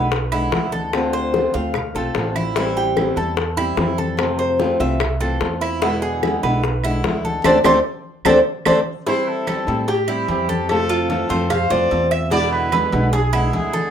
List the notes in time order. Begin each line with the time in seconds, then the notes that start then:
Already playing: B1 D3 G#3 B3 E4 B4
0.12 muted nylon-string guitar stroke, high bongo, high conga
0.32 D3 G#3 B3 E4, high conga, claves
0.52 D2 D3 G#3 B3 E4, high bongo, low bongo, high conga
0.72 A4, high conga
0.93 D3 A3 C4 F4, high bongo, high conga, claves
1.13 C5, high bongo, high conga
1.34 D3 A3 C4 F4, high bongo, high conga
1.54 D2 A3 C4 F4 F5, high bongo, high conga
1.74 muted nylon-string guitar stroke, high bongo, high conga, low conga, claves
1.95 B1 A3 C4 F4 A4, high bongo, high conga, low conga
2.15 A1 D3 A3 C4 F4, high bongo, low bongo, high conga
2.35 E4, high conga, claves
2.56 E3 G3 C4 E4, high bongo, high conga
2.76 G4, high conga
2.96 E3 G3 C4 E4, high bongo, high conga, claves
3.16 E2 G3 C4 E4 A4, high conga
3.37 muted nylon-string guitar stroke, high bongo, high conga
3.57 G3 C4 E4, high conga, claves
3.77 F2 E3 G3 C4 E4, high bongo, low bongo, high conga
3.98 A4, high conga
4.17 C3 A3 C4 F4, high bongo, high conga, claves
4.39 C5, high bongo, high conga
4.59 E3 A3 C4 F4, high bongo, high conga
4.80 C2 E3 A3 C4 F4 E5, high bongo, high conga
5.00 muted nylon-string guitar stroke, high bongo, high conga, low conga, claves
5.20 E3 A3 C4 F4 A4, high bongo, high conga
5.41 E2 A3 C4 F4, high bongo, low bongo, high conga
5.61 E4, claves
5.82 B2 D3 G#3 B3 E4, high bongo, high conga
6.02 G#4, high conga
6.23 D3 G#3 B3 E4, high bongo, high conga, claves
6.43 B1 D3 G#3 B3 E4 B4, high conga
6.64 muted nylon-string guitar stroke, high bongo, high conga
6.83 D3 G#3 B3 E4, high conga, claves
7.04 D2 D3 G#3 B3 E4, high bongo, low bongo, high conga
7.25 A4, high conga
7.44 D2 A3 C4 D4 A4 C5 D5, high bongo, high conga, claves
7.64 D2 A3 C4 D4 A4 C5 D5, high bongo, high conga, claves
8.25 D2 A3 C4 D4 A4 C5 D5, high bongo, high conga, claves
8.65 D2 A3 C4 D4 A4 C5 D5, high bongo, high conga, claves
9.06 E3 G3 C4 E4 C5, cowbell, high conga
9.28 A4, high conga
9.47 E3 G3 C4 E4 A4, cowbell, high conga, claves
9.67 A2 G3 C4 E4, cowbell, high conga
9.88 G4, muted nylon-string guitar stroke, cowbell, high conga
10.08 G3 C4 E4, high conga, claves
10.28 F2 E3 G3 C4 E4 G4, cowbell, high conga
10.49 A4, high conga
10.69 C3 A3 C4 F4 A4, cowbell, high conga, claves
10.89 F4, high conga
11.10 E3 A3 C4 F4 A4, cowbell, high conga
11.29 F2 E3 A3 C4 F4 C5, cowbell, high conga
11.50 C5 F5, muted nylon-string guitar stroke, cowbell, high conga, low conga, claves
11.70 F2 E3 A3 C4 F4 C5 D5, high conga, low conga
11.91 E2 A3 C4 F4, cowbell, high conga
12.11 E5, claves
12.30 B2 D3 G#3 B3 E4 D5, cowbell
12.52 B4, high conga
12.72 D3 G#3 B3 E4 B4, cowbell, high conga, claves
12.92 B1 D3 G#3 B3 E4, cowbell, high conga
13.13 G#4, muted nylon-string guitar stroke, cowbell, high conga
13.33 D3 G#3 B3 E4, high conga, claves
13.53 D2 D3 G#3 B3 E4 G#4, cowbell, high conga
13.73 A4, high conga